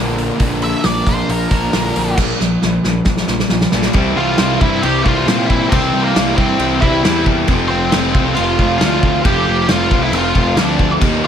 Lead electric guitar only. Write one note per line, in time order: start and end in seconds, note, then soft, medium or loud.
0.64 0.86 E5 loud
0.86 1.07 D5 medium
1.09 1.30 C5 loud
1.31 2.16 A#4 loud
4.17 4.58 F4 medium
4.17 4.62 F5 loud
4.61 4.82 E4 medium
4.61 4.85 E5 medium
4.82 5.03 G4 loud
4.82 5.07 G5 loud
5.04 5.46 F4 medium
5.04 5.49 F5 loud
5.47 5.69 E4 medium
5.47 5.73 E5 loud
5.69 6.01 C4 medium
5.69 6.05 C5 loud
6.03 6.35 A#3 medium
6.03 6.39 A#4 medium
6.36 6.78 C4 medium
6.36 6.80 C5 medium
6.81 7.23 E4 medium
6.81 7.23 E5 loud
7.68 8.32 C4 medium
7.68 8.32 C5 medium
8.34 8.77 F4 medium
8.34 8.77 F5 loud
8.78 9.20 F4 medium
8.78 9.25 F5 medium
9.25 9.67 G4 medium
9.25 9.71 G5 loud
9.70 10.01 F4 medium
9.70 10.04 F5 medium
10.03 10.13 E4 medium
10.03 10.15 E5 medium
10.15 10.55 F4 medium
10.15 10.61 F5 loud
10.61 10.90 D4 medium
10.61 10.91 D5 medium